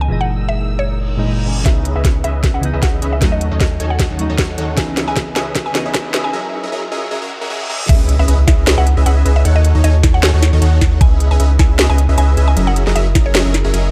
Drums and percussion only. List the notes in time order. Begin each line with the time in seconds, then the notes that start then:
1.46 open hi-hat
1.66 kick, snare, closed hi-hat
1.85 closed hi-hat
2.05 kick, snare, closed hi-hat
2.24 closed hi-hat
2.44 kick, snare, closed hi-hat
2.63 closed hi-hat
2.83 kick, snare, closed hi-hat
3.02 closed hi-hat
3.21 kick, snare, closed hi-hat
3.41 closed hi-hat
3.60 kick, snare, closed hi-hat
3.80 closed hi-hat
3.99 kick, snare, closed hi-hat
4.19 closed hi-hat
4.38 kick, snare, closed hi-hat
4.58 closed hi-hat
4.77 kick, snare, closed hi-hat
4.97 snare, closed hi-hat
5.16 kick, snare, closed hi-hat
5.36 snare, closed hi-hat
5.55 kick, snare, closed hi-hat
5.75 snare, closed hi-hat
5.94 kick, snare, closed hi-hat
6.14 snare, closed hi-hat
7.89 kick, closed hi-hat, crash
8.09 closed hi-hat
8.28 closed hi-hat
8.48 kick, snare, closed hi-hat
8.67 snare, closed hi-hat
8.87 closed hi-hat
9.06 closed hi-hat
9.26 closed hi-hat
9.45 closed hi-hat
9.65 closed hi-hat
9.84 closed hi-hat
10.03 kick, snare, closed hi-hat
10.23 snare, closed hi-hat
10.42 snare, closed hi-hat
10.62 closed hi-hat
10.81 kick, snare, closed hi-hat
11.01 kick, closed hi-hat
11.20 closed hi-hat
11.40 closed hi-hat
11.59 kick, snare, closed hi-hat
11.79 snare, closed hi-hat
11.98 closed hi-hat
12.18 closed hi-hat
12.37 closed hi-hat
12.57 closed hi-hat
12.76 closed hi-hat
12.87 snare
12.96 closed hi-hat
13.15 kick, snare, closed hi-hat
13.35 snare, closed hi-hat
13.54 snare, closed hi-hat
13.74 closed hi-hat